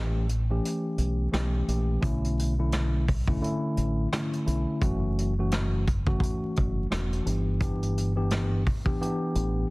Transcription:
Already playing: fingered electric bass A1, tine electric piano E3 A3 C#4 G4
0.29 closed hi-hat
0.50 tine electric piano E3 A3 C#4 G4
0.65 closed hi-hat
0.98 fingered electric bass B1, closed hi-hat
1.32 fingered electric bass B1, tine electric piano E3 A3 C#4 G4, cross-stick, snare, closed hi-hat
1.68 fingered electric bass A#1, tine electric piano E3 A3 C#4 G4, closed hi-hat
2.01 fingered electric bass B1, tine electric piano D3 A3 C#4 E4, kick, closed hi-hat
2.24 closed hi-hat
2.39 closed hi-hat
2.59 tine electric piano D3 A3 C#4 E4
2.72 cross-stick, snare, closed hi-hat
3.08 kick, open hi-hat
3.27 tine electric piano D3 A3 C#4 E4, kick
3.41 tine electric piano D3 A3 C#4 E4, closed hi-hat
3.77 fingered electric bass A1, closed hi-hat
4.12 tine electric piano D3 A3 C#4 E4, cross-stick, snare, closed hi-hat
4.33 closed hi-hat
4.46 fingered electric bass B1, tine electric piano D3 A3 C#4 E4, closed hi-hat
4.81 fingered electric bass F#1, tine electric piano E3 A3 C#4 F#4, kick, closed hi-hat
5.18 closed hi-hat
5.39 tine electric piano E3 A3 C#4 F#4
5.51 cross-stick, snare, closed hi-hat
5.87 kick, closed hi-hat
6.07 tine electric piano E3 A3 C#4 F#4, kick
6.20 kick, closed hi-hat
6.56 fingered electric bass F#1, kick, closed hi-hat
6.90 fingered electric bass E1, tine electric piano E3 A3 C#4 F#4, cross-stick, snare, closed hi-hat
7.12 closed hi-hat
7.25 fingered electric bass G1, tine electric piano E3 B3 D4 G4, closed hi-hat
7.60 tine electric piano E3 B3 D4 G4, kick, closed hi-hat
7.83 closed hi-hat
7.98 closed hi-hat
8.16 tine electric piano E3 B3 D4 G4
8.30 cross-stick, snare, closed hi-hat
8.66 kick, open hi-hat
8.84 tine electric piano E3 B3 D4 G4, kick
9.01 tine electric piano E3 B3 D4 G4, closed hi-hat
9.35 fingered electric bass A1, closed hi-hat

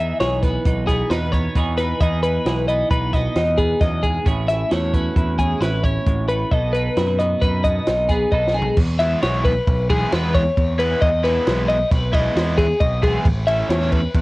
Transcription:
Already playing: picked electric bass E2, clean electric guitar E2 B3 G#4
0.00 clean electric guitar D#4 E5
0.20 picked electric bass B1, clean electric guitar E3 G#4 C#5, snare, closed hi-hat
0.43 clean electric guitar B3 B4, kick, snare, closed hi-hat
0.65 picked electric bass B1, clean electric guitar D#4, kick, closed hi-hat
0.87 clean electric guitar B2 B3 G#4, kick, snare, closed hi-hat
1.10 picked electric bass E2, clean electric guitar D#4 B4, snare, closed hi-hat
1.32 clean electric guitar B3 C#5, kick, closed hi-hat
1.55 clean electric guitar E2 B3 D#4 G#4, picked electric bass E2, kick, closed hi-hat
1.78 clean electric guitar D#4 B4, snare, closed hi-hat
2.01 picked electric bass E2, clean electric guitar E2 B3 D#4 G#4 D#5, kick, closed hi-hat
2.23 clean electric guitar D#4 B4, closed hi-hat
2.45 picked electric bass B1, clean electric guitar E3 G#4, snare, closed hi-hat
2.68 clean electric guitar B3 D#5, closed hi-hat
2.91 picked electric bass B1, clean electric guitar D#4 B4, kick, closed hi-hat
3.13 clean electric guitar B2 B3 D#5, kick, snare, closed hi-hat
3.36 picked electric bass E2, clean electric guitar D#4, snare, closed hi-hat
3.58 clean electric guitar B3 G#4, kick, closed hi-hat
3.80 picked electric bass E2, clean electric guitar F#2 D#5, kick, snare, closed hi-hat
4.03 clean electric guitar G#2 G#4, kick, closed hi-hat
4.25 picked electric bass A1, clean electric guitar A2 C#4 E4 G#4, kick, closed hi-hat
4.48 clean electric guitar E4 E5, snare, closed hi-hat
4.71 picked electric bass E2, clean electric guitar A3 F#4 C#5, snare, closed hi-hat
4.94 clean electric guitar C#4 B4, kick, closed hi-hat
5.16 picked electric bass E2, clean electric guitar E4, kick, closed hi-hat
5.39 clean electric guitar E2 C#4 G#4, kick, closed hi-hat
5.61 picked electric bass A1, clean electric guitar E4 B4, snare, closed hi-hat
5.84 clean electric guitar C#4 C#5, kick, closed hi-hat
6.06 picked electric bass A1, clean electric guitar G#2, kick, closed hi-hat
6.29 clean electric guitar A2 B4, closed hi-hat
6.51 picked electric bass B1, clean electric guitar B2 B3 D#4 A4 D#5, kick, closed hi-hat
6.73 clean electric guitar D#4 B4, closed hi-hat
6.97 picked electric bass F#2, clean electric guitar F#3 E4, snare, closed hi-hat
7.08 clean electric guitar F#4
7.19 clean electric guitar B3 D#5, snare, closed hi-hat
7.41 picked electric bass F#2, clean electric guitar D#4 B4, kick, closed hi-hat
7.64 clean electric guitar B2 B3 D#5, kick, closed hi-hat
7.86 picked electric bass B1, clean electric guitar D#4, snare, closed hi-hat
8.09 clean electric guitar B3 G#4, kick, snare, closed hi-hat
8.32 picked electric bass B1, clean electric guitar B2 B3 D#4 A4 D#5, kick
8.47 snare
8.54 clean electric guitar D#4 G#4
8.62 floor tom
8.77 picked electric bass E2, kick, crash
8.99 overdriven electric guitar E3 G#3 B3 E4, clean electric guitar E5, snare, ride
9.22 picked electric bass B1, overdriven electric guitar E3 G#3 B3 E4, clean electric guitar C#5, snare, ride
9.45 clean electric guitar B4, kick, ride
9.67 picked electric bass B1, kick, ride
9.90 overdriven electric guitar E3 G#3 B3 E4, clean electric guitar G#4, kick, ride
10.12 picked electric bass E2, overdriven electric guitar E3 G#3 B3 E4, clean electric guitar B4, snare, ride
10.34 clean electric guitar C#5, kick, ride
10.57 picked electric bass E2, kick, ride
10.78 overdriven electric guitar E3 G#3 B3 E4, clean electric guitar B4, ride
11.01 picked electric bass E2, clean electric guitar D#5, kick, ride
11.23 overdriven electric guitar E3 G#3 B3 E4, clean electric guitar B4, snare, ride
11.46 picked electric bass B1, overdriven electric guitar E3 G#3 B3 E4, snare, ride
11.68 clean electric guitar D#5, ride
11.91 picked electric bass B1, clean electric guitar B4, kick, snare, ride
12.13 overdriven electric guitar E3 G#3 B3 E4, clean electric guitar D#5, kick, ride
12.36 picked electric bass E2, overdriven electric guitar E3 G#3 B3 E4, snare, ride
12.58 clean electric guitar G#4, kick, snare, ride
12.80 picked electric bass B1, clean electric guitar D#5, kick, ride
13.03 overdriven electric guitar E3 G#3 B3 E4, clean electric guitar G#4, kick, snare, ride
13.25 picked electric bass A1, kick, ride
13.47 overdriven electric guitar E3 A3 C#4 E4, clean electric guitar E5, ride
13.69 picked electric bass E2, overdriven electric guitar E3 A3 C#4 E4, clean electric guitar C#5, snare, ride
13.92 clean electric guitar B4, kick, ride
14.15 picked electric bass E2, kick, ride

